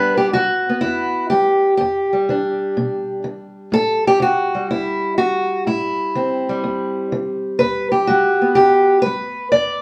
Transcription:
Already playing: E2 G3 B3 D4 B4
0.17 G4
0.33 G3 F#4
0.69 B3
0.81 E2 E4
1.30 G3 G4
1.77 E2 G4
2.13 G3
2.29 E3 D4
2.77 B2
3.24 E3
3.72 A2 A4
4.07 G4
4.20 E3 F#4
4.55 G3
4.71 E2 E4
5.18 E3 F#4
5.67 A2 E4
6.15 E3 C4
6.49 G3
6.64 E2
7.12 E3
7.59 E2 B4
7.92 G4
8.07 G3 F#4
8.42 B3
8.55 E2 G4
9.02 B4
9.06 G3
9.52 E2 D5

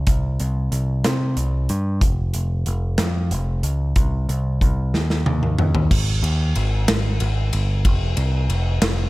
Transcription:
0.07 C2, kick, closed hi-hat
0.40 C2, closed hi-hat
0.72 C2, closed hi-hat
1.04 C3, snare, closed hi-hat
1.37 C2, closed hi-hat
1.69 G2, closed hi-hat
2.01 F1, kick, closed hi-hat
2.34 F1, closed hi-hat
2.66 F1, closed hi-hat
2.98 F2, snare, closed hi-hat
3.31 F1, closed hi-hat
3.63 C#2, closed hi-hat
3.96 C2, kick, closed hi-hat
4.29 C2, closed hi-hat
4.61 C2, kick, closed hi-hat
4.94 D#2, snare
5.10 snare
5.26 D#2, high tom
5.43 mid tom
5.59 D#2, mid tom
5.75 floor tom
5.91 G#1, kick, crash
6.22 D#2, ride
6.55 G#1, ride
6.88 G#1, snare, ride
7.20 G#1, ride
7.53 G1, ride
7.85 F1, kick, ride
8.17 C2, ride
8.49 F1, ride
8.81 F1, snare, ride

